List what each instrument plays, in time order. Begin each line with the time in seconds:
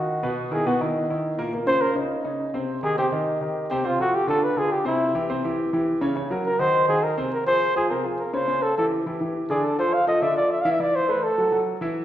Already playing: grand piano D#3 D#4 F#4, flugelhorn F#4
0.23 grand piano B2 B3 B4
0.51 grand piano D#3 D#4 E4, flugelhorn G#4
0.66 grand piano B2 B3 B4, flugelhorn F#4
0.81 grand piano D#3 D#4 E4
1.10 grand piano D#3 D#4 E4
1.38 grand piano A#2 A#3 A#4
1.53 grand piano A#2 A#3 A#4
1.67 grand piano C#3 C#4 F4, flugelhorn C5
1.81 flugelhorn A#4
1.96 grand piano C#3 C#4 D#4
2.24 grand piano C#3 C#4 D#4
2.54 grand piano C3 C4 C5
2.83 grand piano D#3 D#4 G4, flugelhorn G#4
2.97 grand piano C3 C4 C5, flugelhorn G4
3.12 grand piano D#3 D#4 G4
3.41 grand piano D#3 D#4 G4
3.70 grand piano C3 C4 C5, flugelhorn G4
3.84 grand piano C3 C4 C5, flugelhorn F4
3.99 grand piano F3 F4 A4, flugelhorn F#4
4.15 flugelhorn G4
4.27 grand piano D3 D4 F4, flugelhorn A4
4.44 flugelhorn B4
4.56 grand piano D3 D4 F4, flugelhorn G#4
4.72 flugelhorn G4
4.85 grand piano C3 C4 C5, flugelhorn E4
5.15 grand piano E3 E4 G4
5.29 grand piano C3 C4 C5
5.44 grand piano E3 E4 G4
5.73 grand piano E3 E4 G4
6.01 grand piano C#3 C#4 C#5
6.16 grand piano C#3 C#4 C#5
6.31 grand piano F#3 F#4 A#4
6.46 flugelhorn A#4
6.59 grand piano D#3 D#4 F#4, flugelhorn C5
6.88 grand piano D#3 D#4 F#4, flugelhorn G#4
7.03 flugelhorn A#4
7.17 grand piano C3 C4 C5
7.33 flugelhorn A#4
7.46 grand piano F3 F4 G#4, flugelhorn C5
7.76 grand piano F3 F4 G#4, flugelhorn G#4
7.90 grand piano C3 C4 C5, flugelhorn A#4
8.04 grand piano F3 F4 G#4
8.19 flugelhorn A#4
8.33 grand piano C#3 C#4 C#5, flugelhorn C5
8.48 grand piano C#3 C#4 C#5
8.62 flugelhorn A4
8.78 grand piano E3 E4 G4, flugelhorn A4
9.06 grand piano E3 E4 G4
9.21 grand piano E3 E4 G4
9.50 grand piano D3 D4 D5, flugelhorn G#4
9.64 flugelhorn A4
9.78 grand piano F3 F4 A4, flugelhorn C5
9.94 flugelhorn F5
10.07 grand piano F3 F4 A4, flugelhorn D#5
10.22 grand piano D3 D4 D5, flugelhorn E5
10.37 grand piano F3 F4 A4, flugelhorn D5
10.51 flugelhorn E5
10.61 grand piano E3 E4, flugelhorn F5
10.65 grand piano E5
10.71 flugelhorn E5
10.80 grand piano E3 E4 E5, flugelhorn D5
10.95 flugelhorn C5
11.08 grand piano A3 A4 C5, flugelhorn B4
11.23 flugelhorn A4
11.38 grand piano F#3 F#4 A4
11.52 grand piano F#3 F#4 A4
11.81 grand piano E3 E4 E5